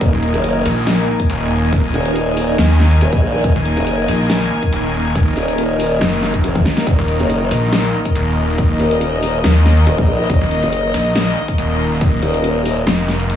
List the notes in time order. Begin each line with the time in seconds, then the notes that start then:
Already playing: D#3 A#3 D#4 A#4 D#5
0.01 D#1 G#5, kick, closed hi-hat
0.13 D#1
0.23 closed hi-hat
0.34 F#1, closed hi-hat
0.44 closed hi-hat
0.65 A#1, open hi-hat
0.87 snare, closed hi-hat
1.20 kick, closed hi-hat
1.30 D#1, closed hi-hat
1.73 kick, closed hi-hat
1.94 D#1, closed hi-hat
2.05 closed hi-hat
2.15 closed hi-hat
2.37 open hi-hat
2.58 D#2, snare, closed hi-hat
2.80 snare
2.91 closed hi-hat
3.01 D#1, closed hi-hat
3.13 A#1, kick
3.44 D#1, kick, closed hi-hat
3.55 D#1
3.65 closed hi-hat
3.77 F#1, closed hi-hat
3.87 closed hi-hat
4.08 A#1, open hi-hat
4.30 snare, closed hi-hat
4.63 kick, closed hi-hat
4.73 D#1, closed hi-hat
5.15 kick, closed hi-hat
5.37 D#1, closed hi-hat
5.48 closed hi-hat
5.58 closed hi-hat
5.80 open hi-hat
6.01 F#1, snare, closed hi-hat
6.23 snare
6.34 kick, closed hi-hat
6.44 F1, closed hi-hat
6.55 kick, high tom
6.65 snare
6.77 snare
6.87 D#1 D#5, kick, closed hi-hat
6.98 D#1
7.08 closed hi-hat
7.20 F#1, closed hi-hat
7.30 closed hi-hat
7.51 A#1, open hi-hat
7.73 snare, closed hi-hat
8.05 kick, closed hi-hat
8.15 D#1, closed hi-hat
8.58 kick, closed hi-hat
8.80 D#1, closed hi-hat
8.91 closed hi-hat
9.01 closed hi-hat
9.23 open hi-hat
9.44 D#2, snare, closed hi-hat
9.65 snare
9.77 closed hi-hat
9.87 D#1, closed hi-hat
9.98 A#1, kick
10.30 D#1, kick, closed hi-hat
10.41 D#1
10.51 closed hi-hat
10.63 F#1, closed hi-hat
10.73 closed hi-hat
10.94 A#1, open hi-hat
11.15 snare, closed hi-hat
11.48 kick, closed hi-hat
11.58 D#1, closed hi-hat
12.01 kick, closed hi-hat
12.23 D#1, closed hi-hat
12.34 closed hi-hat
12.44 closed hi-hat
12.65 open hi-hat
12.87 F1, snare, closed hi-hat
13.08 snare
13.20 closed hi-hat
13.30 F#1, closed hi-hat